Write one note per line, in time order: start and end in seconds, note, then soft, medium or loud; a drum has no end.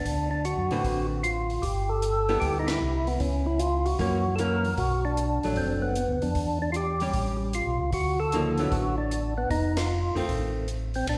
0.00 0.29 D4 medium
0.05 0.55 D2 medium
0.05 kick soft
0.05 open hi-hat soft
0.31 0.45 D4 medium
0.45 1.07 F#4 medium
0.45 closed hi-hat soft
0.58 0.70 F#2 medium
0.71 0.84 A2 medium
0.71 1.21 D3 medium
0.71 1.22 C4 medium
0.71 1.22 F#4 medium
0.71 1.22 B4 medium
0.71 open hi-hat soft
0.84 1.59 A1 medium
0.84 kick soft
0.84 open hi-hat soft
1.23 1.64 F4 medium
1.23 closed hi-hat soft
1.50 open hi-hat soft
1.62 2.38 G1 medium
1.62 1.90 G4 medium
1.62 kick soft
1.62 open hi-hat soft
1.89 2.38 A4 loud
2.02 closed hi-hat soft
2.29 2.79 G3 medium
2.29 2.79 B3 medium
2.29 2.79 E4 medium
2.29 2.79 A4 medium
2.29 open hi-hat soft
2.40 2.78 D2 medium
2.40 2.58 G4 medium
2.40 kick soft
2.40 open hi-hat soft
2.59 2.68 D#4 medium
2.67 3.08 E4 medium
2.67 snare medium
2.67 ride medium
2.82 3.18 C2 medium
3.07 3.21 B3 medium
3.07 open hi-hat soft
3.20 3.95 C#2 medium
3.20 3.47 C#4 medium
3.20 kick soft
3.20 open hi-hat soft
3.46 3.60 E4 medium
3.59 3.86 F4 medium
3.59 closed hi-hat soft
3.86 4.35 F#4 loud
3.86 open hi-hat soft
3.99 4.74 F#2 medium
3.99 4.23 E3 medium
3.99 4.23 A#3 medium
3.99 4.23 C#4 medium
3.99 kick soft
3.99 open hi-hat soft
4.36 4.62 E3 medium
4.36 4.63 A#3 medium
4.36 4.39 A4 medium
4.36 4.79 A#4 medium
4.36 closed hi-hat soft
4.40 4.63 C#4 medium
4.65 open hi-hat soft
4.78 5.39 B1 medium
4.78 5.05 F#4 medium
4.78 kick soft
4.78 open hi-hat soft
5.05 5.53 D4 medium
5.17 closed hi-hat soft
5.43 5.56 A#1 medium
5.43 5.94 F#3 medium
5.43 5.94 A3 medium
5.43 5.94 D4 medium
5.43 open hi-hat soft
5.56 6.05 F#1 medium
5.56 5.81 C4 medium
5.56 kick soft
5.56 open hi-hat soft
5.82 6.23 B3 medium
5.95 closed hi-hat soft
6.09 6.21 D2 medium
6.22 6.35 F2 medium
6.22 6.59 D4 medium
6.22 open hi-hat soft
6.35 7.10 E2 medium
6.35 kick soft
6.35 open hi-hat soft
6.62 6.70 D4 medium
6.72 6.76 F4 medium
6.72 closed hi-hat soft
6.76 7.37 G4 medium
7.00 7.51 G3 medium
7.00 7.51 C#4 medium
7.00 open hi-hat soft
7.13 7.62 A1 medium
7.13 kick soft
7.13 open hi-hat soft
7.53 7.91 F4 medium
7.53 closed hi-hat soft
7.67 7.79 B1 medium
7.79 7.91 C#2 medium
7.92 8.67 D2 medium
7.92 8.20 F#4 medium
7.92 kick soft
7.92 open hi-hat soft
8.20 8.73 A4 medium
8.32 8.56 C#3 medium
8.32 8.56 F3 medium
8.32 8.57 A#3 medium
8.32 8.57 D#4 medium
8.32 closed hi-hat soft
8.58 8.93 D3 medium
8.58 8.93 F#3 medium
8.58 8.93 B3 medium
8.58 8.93 E4 medium
8.58 open hi-hat soft
8.71 9.46 A1 medium
8.71 8.96 F#4 medium
8.71 kick soft
8.71 open hi-hat soft
8.98 9.34 D4 medium
9.11 closed hi-hat soft
9.38 9.49 B3 medium
9.50 10.12 F1 medium
9.50 9.77 D#4 medium
9.50 kick soft
9.50 open hi-hat soft
9.77 10.25 F4 medium
9.77 snare medium
9.77 ride medium
10.15 10.22 F1 soft
10.15 10.65 D#3 medium
10.15 10.66 A3 medium
10.15 10.66 C4 medium
10.15 open hi-hat soft
10.29 11.03 A1 medium
10.29 kick soft
10.29 open hi-hat soft
10.68 closed hi-hat soft
10.94 11.07 C4 medium
10.94 open hi-hat soft
11.07 11.18 A#1 medium
11.07 11.18 D4 medium
11.07 kick soft
11.07 ride medium